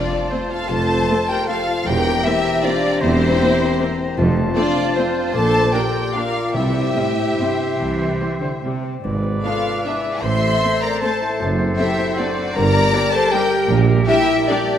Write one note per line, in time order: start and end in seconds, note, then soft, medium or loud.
0.00 0.68 F2 medium
0.00 0.87 A3 medium
0.00 3.32 C4 soft
0.00 0.28 D4 medium
0.00 0.28 F4 medium
0.00 1.88 F4 medium
0.00 0.30 C5 medium
0.00 0.29 D5 loud
0.00 0.32 D5 medium
0.00 1.84 A5 medium
0.00 2.80 C6 medium
0.11 1.28 A4 medium
0.30 0.39 A3 medium
0.30 0.50 C4 medium
0.30 0.40 C4 medium
0.30 0.51 F4 medium
0.30 0.52 C5 medium
0.30 1.07 C5 medium
0.30 0.51 C5 medium
0.50 0.69 F4 medium
0.50 1.67 F4 medium
0.50 0.69 A4 medium
0.50 0.70 F5 medium
0.50 0.70 F5 loud
0.69 1.02 F1 medium
0.69 1.88 F2 medium
0.69 1.02 F2 medium
0.69 1.29 A4 loud
0.69 1.29 C5 loud
0.69 1.30 A5 loud
0.69 1.28 A5 loud
0.89 1.88 A3 medium
1.08 1.17 A3 medium
1.08 1.17 C4 medium
1.08 1.47 C5 medium
1.28 1.48 G4 loud
1.28 1.88 A4 medium
1.28 1.48 A#4 loud
1.28 1.48 G5 loud
1.28 1.49 G5 loud
1.47 1.57 A3 medium
1.47 1.57 C4 medium
1.47 1.86 F4 medium
1.47 1.86 A4 medium
1.47 2.23 C5 medium
1.47 1.86 F5 loud
1.68 1.88 F4 medium
1.86 2.18 E1 loud
1.86 2.19 E1 loud
1.86 3.00 E2 medium
1.86 2.18 E2 medium
1.86 2.25 G4 loud
1.86 4.01 G4 medium
1.86 2.24 A#4 loud
1.86 2.25 G5 loud
1.86 4.14 A#5 medium
2.04 3.18 A#3 medium
2.24 2.33 A#3 medium
2.24 2.33 C4 medium
2.24 2.63 E4 loud
2.24 2.64 G4 loud
2.24 2.63 C5 medium
2.24 2.63 E5 loud
2.24 2.64 E5 loud
2.44 3.58 A#4 medium
2.63 2.73 A#3 medium
2.63 2.72 C4 medium
2.63 3.01 D4 loud
2.63 3.01 F4 loud
2.63 3.38 C5 medium
2.63 3.01 D5 loud
2.63 3.03 D5 loud
2.83 3.97 G4 medium
3.01 3.33 E1 loud
3.01 4.18 E2 loud
3.01 3.33 E2 loud
3.01 4.17 C4 loud
3.01 4.17 E4 loud
3.01 4.17 C5 loud
3.01 4.15 C5 loud
3.19 4.18 A#3 medium
3.39 3.47 A#3 medium
3.39 3.47 C4 medium
3.39 3.78 C5 medium
3.59 4.19 A#4 medium
3.79 3.88 A#3 medium
3.79 3.87 C4 medium
3.79 4.55 C5 medium
3.98 4.19 G4 medium
4.17 4.49 F1 loud
4.17 4.50 F1 loud
4.17 5.36 F2 loud
4.17 4.50 F2 loud
4.17 4.73 F2 loud
4.17 6.23 F4 medium
4.17 5.36 A5 medium
4.36 5.36 A3 medium
4.55 4.64 A3 medium
4.55 4.64 C4 medium
4.55 4.95 D4 loud
4.55 4.94 F4 loud
4.55 4.95 C5 medium
4.55 4.97 D5 loud
4.55 4.94 D5 loud
4.77 5.36 A4 medium
4.95 5.05 A3 medium
4.95 5.05 C4 medium
4.95 5.35 C4 medium
4.95 5.34 F4 medium
4.95 5.34 C5 loud
4.95 5.36 C5 medium
4.95 5.34 C5 loud
5.15 6.33 F4 medium
5.33 5.66 A#1 loud
5.33 5.67 A#1 medium
5.33 6.55 A#2 medium
5.33 5.67 A#2 medium
5.33 5.73 A4 loud
5.33 5.74 C5 loud
5.33 7.09 D5 medium
5.33 5.74 A5 loud
5.52 6.56 A#3 medium
5.72 5.82 A#3 medium
5.72 5.81 D4 medium
5.72 6.15 G4 medium
5.72 6.14 A#4 medium
5.72 6.13 D5 medium
5.72 6.16 G5 loud
5.72 6.15 G5 loud
5.94 6.56 A#4 medium
6.14 6.23 A#3 medium
6.14 6.23 D4 medium
6.14 6.54 F4 medium
6.14 6.54 A#4 medium
6.14 6.56 D5 medium
6.14 6.55 F5 medium
6.14 6.54 F5 loud
6.34 6.56 F4 medium
6.53 6.89 C2 medium
6.53 6.88 C3 medium
6.53 7.78 C3 medium
6.53 7.13 C3 loud
6.53 8.62 E4 loud
6.53 8.62 G4 medium
6.53 8.79 G4 medium
6.53 8.62 E5 medium
6.53 8.59 E5 loud
6.74 7.97 C4 medium
6.94 7.34 A2 medium
6.94 7.04 G3 medium
6.94 7.04 C4 medium
6.94 7.37 G4 medium
7.17 7.58 C5 medium
7.37 7.78 G2 medium
7.37 7.48 G3 medium
7.37 7.48 C4 medium
7.37 8.18 G4 medium
7.37 8.81 C5 medium
7.59 8.40 C5 medium
7.78 8.12 C2 medium
7.78 8.13 C2 medium
7.78 9.05 C3 medium
7.78 8.41 E3 medium
7.99 9.05 C4 medium
8.19 8.29 G3 medium
8.19 8.28 C4 medium
8.19 8.61 G4 medium
8.41 8.49 D3 medium
8.41 8.83 C5 medium
8.62 9.02 C3 medium
8.62 8.73 G3 medium
8.62 8.73 C4 medium
8.62 9.05 G4 medium
8.84 9.05 C5 medium
9.03 9.37 G#1 medium
9.03 9.37 G#2 medium
9.03 10.24 G#2 medium
9.03 10.18 B4 medium
9.03 10.24 D5 medium
9.23 10.24 B3 medium
9.43 9.54 B3 medium
9.43 9.53 D4 medium
9.43 9.82 F4 medium
9.43 9.82 A4 medium
9.43 9.85 B4 medium
9.43 9.81 F5 medium
9.43 9.82 F5 loud
9.66 10.04 D4 medium
9.85 9.94 B3 medium
9.85 9.93 D4 medium
9.85 10.23 E4 medium
9.85 10.22 G#4 medium
9.85 10.25 B4 medium
9.85 10.23 E5 medium
10.05 10.25 D4 medium
10.22 10.55 A1 medium
10.22 10.55 A2 medium
10.22 11.42 A2 medium
10.22 12.51 A4 medium
10.22 12.57 C5 medium
10.22 10.83 C5 loud
10.22 10.82 E5 loud
10.22 10.82 C6 loud
10.43 11.57 C4 medium
10.63 10.71 A3 medium
10.63 10.71 C4 medium
10.63 11.02 A4 medium
10.81 11.02 A#4 loud
10.81 11.98 C5 medium
10.81 11.02 D5 loud
10.81 11.03 A#5 loud
10.81 11.02 A#5 loud
11.01 11.10 A3 medium
11.01 11.10 C4 medium
11.01 11.40 A4 medium
11.01 11.77 A4 medium
11.01 11.39 C5 medium
11.01 11.38 A5 loud
11.01 11.39 A5 loud
11.22 11.41 E4 medium
11.40 11.72 F#1 loud
11.40 11.71 F#2 medium
11.40 12.57 F#2 medium
11.58 12.56 C4 medium
11.77 11.87 A3 medium
11.77 11.87 C4 medium
11.77 12.15 E4 loud
11.77 12.15 G4 loud
11.77 12.17 A4 medium
11.77 12.15 E5 loud
11.99 12.57 C5 medium
12.17 12.27 A3 medium
12.17 12.27 C4 medium
12.17 12.55 D4 medium
12.17 12.55 F#4 medium
12.17 12.57 A4 medium
12.17 12.55 D5 loud
12.17 12.54 D5 medium
12.38 13.50 D4 medium
12.55 12.86 G1 loud
12.55 12.86 G2 loud
12.55 13.72 G2 loud
12.55 14.78 G4 loud
12.55 13.12 A#4 loud
12.55 14.78 A#4 medium
12.55 13.13 D5 loud
12.55 13.14 A#5 loud
12.55 13.13 A#5 loud
12.73 13.88 A#3 medium
12.93 13.01 G3 medium
12.93 13.01 D4 medium
12.93 13.31 G4 medium
13.12 13.32 A4 loud
13.12 14.27 A#4 medium
13.12 13.32 C5 loud
13.12 13.32 A5 loud
13.12 13.33 A5 loud
13.32 13.40 G3 medium
13.32 13.40 D4 medium
13.32 13.69 G4 loud
13.32 14.07 G4 medium
13.32 13.69 A#4 loud
13.32 13.69 G5 loud
13.32 13.70 G5 loud
13.51 14.66 D4 medium
13.69 14.01 A#1 loud
13.69 14.01 A#2 loud
13.69 14.78 A#2 loud
13.89 14.78 A#3 medium
14.06 14.16 G3 medium
14.06 14.15 D4 medium
14.06 14.45 E4 loud
14.06 14.47 G4 medium
14.06 14.46 G4 loud
14.06 14.45 E5 loud
14.28 14.78 A#4 medium
14.47 14.57 G3 medium
14.47 14.78 D4 loud
14.47 14.57 D4 medium
14.47 14.78 G4 medium
14.47 14.78 G4 loud
14.47 14.78 D5 loud
14.68 14.78 D4 medium